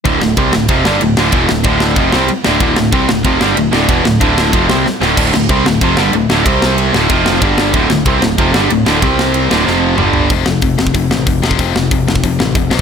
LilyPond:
<<
  \new Staff \with { instrumentName = "Distorted electric guitar" } { \clef bass \time 4/4 \key d \minor \tempo 4 = 187 <d, a, d>8 <d, a,>8 <c g c'>8 <d, a,>8 <f, c f>8 <g, d g>8 <d, a,>8 <d, a, d>8 | <e, b, e>8 <d, a,>8 <d, a, d>4 <f, c f>8 <c g c'>8 r8 <d, a, d>8 | <d, a, d>8 <d, a,>8 <c g c'>8 <d, a,>8 <f, c f>8 <g, d g>8 <d, a,>8 <d, a, d>8 | <e, b, e>8 <d, a,>8 <d, a, d>4 <f, c f>8 <c g c'>8 r8 <d, a, d>8 |
<d, a, d>8 <d, a,>8 <c g c'>8 <d, a,>8 <f, c f>8 <g, d g>8 <d, a,>8 <d, a, d>8 | <c g c'>4. <d, a, d>8 <f, c f>4 <g, d g>4 | <d, a, d>8 <d, a,>8 <c g c'>8 <d, a,>8 <f, c f>8 <g, d g>8 <d, a,>8 <d, a, d>8 | <c g c'>4. <d, a, d>8 <f, c f>4 <g, d g>4 |
<f, c f>8 <f, c>8 <f, c>8 <f, c>8 <f, c>8 <f, c>8 <f, c>8 <f, c f>8 | <f, c f>8 <f, c>8 <f, c>8 <f, c>8 <f, c>8 <f, c>8 <f, c>8 <f, c f>8 | }
  \new Staff \with { instrumentName = "Distorted electric guitar" } { \clef bass \time 4/4 \key d \minor <d, a, d>8 <d, a,>8 <c g c'>8 <d, a,>8 <f, c f>8 <g, d g>8 <d, a,>8 <d, a, d>8 | <e, b, e>8 <d, a,>8 <d, a, d>4 <f, c f>8 <c g c'>8 r8 <d, a, d>8 | <d, a, d>8 <d, a,>8 <c g c'>8 <d, a,>8 <f, c f>8 <g, d g>8 <d, a,>8 <d, a, d>8 | <e, b, e>8 <d, a,>8 <d, a, d>4 <f, c f>8 <c g c'>8 r8 <d, a, d>8 |
<d, a, d>8 <d, a,>8 <c g c'>8 <d, a,>8 <f, c f>8 <g, d g>8 <d, a,>8 <d, a, d>8 | <c g c'>4. <d, a, d>8 <f, c f>4 <g, d g>4 | <d, a, d>8 <d, a,>8 <c g c'>8 <d, a,>8 <f, c f>8 <g, d g>8 <d, a,>8 <d, a, d>8 | <c g c'>4. <d, a, d>8 <f, c f>4 <g, d g>4 |
r1 | r1 | }
  \new Staff \with { instrumentName = "Distorted electric guitar" } { \clef bass \time 4/4 \key d \minor <d, a, d>8 <d, a,>8 <c g c'>8 <d, a,>8 <f, c f>8 <g, d g>8 <d, a,>8 <d, a, d>8 | <e, b, e>8 <d, a,>8 <d, a, d>4 <f, c f>8 <c g c'>8 r8 <d, a, d>8 | <d, a, d>8 <d, a,>8 <c g c'>8 <d, a,>8 <f, c f>8 <g, d g>8 <d, a,>8 <d, a, d>8 | <e, b, e>8 <d, a,>8 <d, a, d>4 <f, c f>8 <c g c'>8 r8 <d, a, d>8 |
<d, a, d>8 <d, a,>8 <c g c'>8 <d, a,>8 <f, c f>8 <g, d g>8 <d, a,>8 <d, a, d>8 | <c g c'>4. <d, a, d>8 <f, c f>4 <g, d g>4 | <d, a, d>8 <d, a,>8 <c g c'>8 <d, a,>8 <f, c f>8 <g, d g>8 <d, a,>8 <d, a, d>8 | <c g c'>4. <d, a, d>8 <f, c f>4 <g, d g>4 |
r1 | r1 | }
  \new Staff \with { instrumentName = "Picked electric bass" } { \clef bass \time 4/4 \key d \minor d,,8 d,,8 c,8 d,,8 f,,8 g,,8 d,,8 d,,8 | e,,8 d,,8 d,,4 f,,8 c,8 r8 d,,8 | d,,8 d,,8 c,8 d,,8 f,,8 g,,8 d,,8 d,,8 | e,,8 d,,8 d,,4 f,,8 c,8 r8 d,,8 |
d,,8 d,,8 c,8 d,,8 f,,8 g,,8 d,,8 d,,8 | c,4. d,,8 f,,4 g,,4 | d,,8 d,,8 c,8 d,,8 f,,8 g,,8 d,,8 d,,8 | c,4. d,,8 f,,4 g,,4 |
f,,8 f,,8 f,,8 f,,8 f,,8 a,,8 f,,8 f,,8 | f,,8 f,,8 f,,8 f,,8 f,,8 a,,8 f,,8 b,,8 | }
  \new DrumStaff \with { instrumentName = "Drums" } \drummode { \time 4/4 <bd cymr>8 sn8 <bd cymr>8 sn8 <bd cymr>8 sn8 cymr8 sn8 | <bd cymr>8 sn8 <bd cymr>8 sn8 <bd cymr>8 sn8 cymr8 sn8 | <bd cymr>8 sn8 <bd cymr>8 sn8 <bd cymr>8 sn8 cymr8 sn8 | <bd cymr>8 sn8 <bd cymr>8 sn8 <bd cymr>8 sn8 sn8 sn8 |
<cymc bd>8 sn8 <bd cymr>8 sn8 <bd cymr>8 sn8 cymr8 sn8 | <bd cymr>8 sn8 cymr8 sn8 <bd cymr>8 sn8 <bd cymr>8 sn8 | <bd cymr>8 sn8 <bd cymr>8 sn8 <bd cymr>8 sn8 cymr8 sn8 | <bd cymr>8 sn8 cymr8 sn8 sn4 toml8 tomfh8 |
<hho bd>8 sn8 <hho bd>8 sn16 bd16 <hho bd>8 sn8 <hho bd>8 sn16 bd16 | <hho bd>8 sn8 <hho bd>8 sn16 bd16 <hho bd>8 sn8 <hho bd>8 sn8 | }
>>